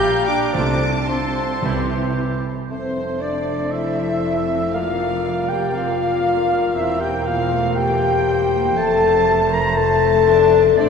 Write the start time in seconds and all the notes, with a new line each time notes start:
Already playing: G3 G4 A#4 G5 G6
0.00 F5
0.27 D4 D5 G5 D6
0.54 C2 C3 F3 A3 D4 F4 A4 D5 A5 D6
1.07 F3 C4 A4 C5 C6
1.13 C4
1.62 C2 C3 E3 G3 E4 G4
2.70 F1 F2 A3 C4 A4 C5
3.20 D4 D5
3.71 C4 E4 E5
4.24 D4
4.49 C4
4.72 A#3 F4 A#4 D5 F5
4.99 A3
5.24 G3
5.49 A#3 G4 G5
5.74 C4 F4 F5
6.00 A#3
6.24 A3
6.50 G3
6.74 E1 E2 C4 E4 C5 E5
7.00 G4 G5
7.25 A#3 F4 F5
7.51 A3
7.74 G4 G5
8.27 G3
8.52 A#3
8.75 F1 F2 A3 A4 C5 A5
9.27 G3
9.51 F3 A#4 A#5
9.76 A3 A4 A5
10.28 D4
10.76 A1 A2 A3 C4 D4 C5 D5